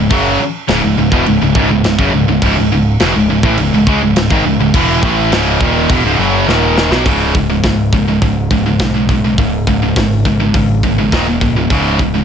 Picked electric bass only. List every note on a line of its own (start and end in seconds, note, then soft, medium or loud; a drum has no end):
0.10 0.38 F#1 medium
0.40 muted picked electric bass stroke soft
0.69 0.82 C#1 medium
0.84 0.97 C#1 medium
0.98 1.11 C#1 medium
1.12 1.25 E1 medium
1.27 1.40 C#1 medium
1.42 1.54 C#1 medium
1.55 1.69 C#1 loud
1.70 1.84 C#1 medium
1.84 1.98 C#1 medium
1.99 2.12 F#1 loud
2.13 2.27 C#1 medium
2.27 2.41 C#1 medium
2.42 2.56 C#1 loud
2.58 2.71 C#1 medium
2.72 2.99 C#1 medium
3.01 3.14 E1 medium
3.15 3.28 C#1 medium
3.30 3.43 C#1 medium
3.43 3.57 A1 medium
3.58 3.72 C#1 medium
3.73 3.86 C#1 medium
3.87 4.00 C#2 loud
4.02 4.15 C#1 medium
4.16 4.30 C#1 medium
4.31 4.44 G#1 loud
4.45 4.58 C#1 medium
4.59 4.73 C#1 medium
4.74 5.01 E1 medium
5.03 5.30 A1 loud
5.31 5.58 C#1 medium
5.61 5.88 D#1 medium
5.89 6.03 E1 medium
6.04 6.18 C#1 medium
6.18 6.46 F#1 loud
6.48 6.88 D#1 medium
6.91 7.05 B1 medium
7.06 7.60 C#1 medium
7.64 8.18 C#1 medium
8.22 8.49 C#1 medium
8.51 8.78 C#1 medium
8.80 9.34 B1 medium
9.38 9.65 C#1 medium
9.67 9.94 C#1 medium
9.96 10.51 G#1 medium
10.54 11.09 G#1 medium
11.12 11.39 D#1 medium
11.41 11.69 C#1 medium
11.70 12.24 C#1 medium